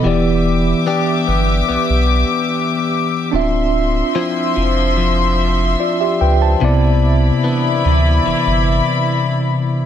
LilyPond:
<<
  \new Staff \with { instrumentName = "String section" } { \time 4/4 \key d \dorian \tempo 4 = 73 <g' e'' d'''>1 | <f e'' c'''>1 | <e' d'' b''>1 | }
  \new Staff \with { instrumentName = "Tine electric piano" } { \time 4/4 \key d \dorian << { r1 | r2. <f' d''>16 <g' e''>16 <b' g''>16 <c'' a''>16~ | <c'' a''>16 r2. r8. | } \\ { <e b g' d''>1 | <c' d' f' e''>1 | <c b e' d''>1 | } >> }
  \new Staff \with { instrumentName = "Clean electric guitar" } { \time 4/4 \key d \dorian e4 <b d' g'>8 b8 b2 | r4 <f c' e'>8 f8 f2 | c4 <e b d'>8 e8 e2 | }
  \new Staff \with { instrumentName = "Sub bass" } { \clef bass \time 4/4 \key d \dorian e,,4 r8 g,,8 b,,16 b,,8 r4 r16 | d,,4 r8 f,,4. r8 cis,8 | c,4 r8 d,8 g,,16 g,,8 r4 r16 | }
>>